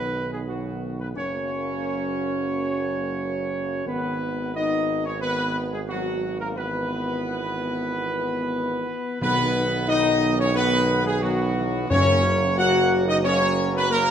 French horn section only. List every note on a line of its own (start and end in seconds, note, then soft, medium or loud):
0.00 0.28 B3 medium
0.31 0.38 G#3 medium
0.49 0.96 F#3 medium
0.99 1.15 B3 medium
1.16 3.84 C#4 loud
3.88 4.51 B3 medium
4.56 5.02 D#4 loud
5.05 5.22 C#4 medium
5.22 5.68 B3 medium
5.72 5.80 G#3 medium
5.91 6.37 F#3 medium
6.41 6.55 A#3 medium
6.57 9.19 B3 medium
9.22 9.85 B3 loud
9.88 10.34 D#4 loud
10.39 10.54 C#4 loud
10.54 11.01 B3 loud
11.03 11.11 G#3 loud
11.21 11.86 F#3 medium
11.90 12.41 C#4 loud
12.58 13.04 F#4 loud
13.07 13.24 D#4 loud
13.24 13.71 C#4 loud
13.73 13.89 B3 loud
13.90 14.11 A#3 loud